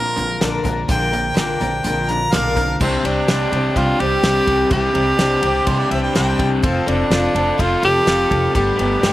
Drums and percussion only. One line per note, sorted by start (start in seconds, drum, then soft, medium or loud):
0.17 closed hi-hat medium
0.41 snare loud
0.41 closed hi-hat medium
0.65 kick medium
0.65 closed hi-hat medium
0.89 kick loud
0.89 closed hi-hat medium
1.13 closed hi-hat medium
1.37 snare loud
1.37 closed hi-hat medium
1.61 closed hi-hat medium
1.84 closed hi-hat loud
2.09 closed hi-hat medium
2.32 snare loud
2.32 closed hi-hat medium
2.57 kick medium
2.57 closed hi-hat medium
2.81 kick loud
2.81 crash loud
3.05 ride medium
3.28 snare loud
3.28 ride loud
3.53 ride medium
3.76 kick medium
3.76 ride loud
4.00 ride medium
4.23 snare loud
4.23 ride medium
4.47 kick medium
4.47 ride medium
4.71 kick loud
4.71 ride medium
4.95 ride medium
5.19 snare loud
5.19 ride medium
5.43 ride medium
5.67 kick medium
5.67 ride loud
5.91 ride medium
6.15 snare loud
6.15 ride loud
6.39 kick medium
6.39 ride medium
6.63 kick loud
6.63 ride loud
6.88 ride medium
7.11 snare loud
7.11 ride loud
7.36 ride medium
7.59 kick medium
7.59 ride loud
7.83 ride medium
8.07 snare loud
8.07 ride loud
8.31 kick medium
8.31 ride medium
8.55 kick loud
8.55 ride medium
8.79 ride medium
9.03 snare loud
9.03 ride loud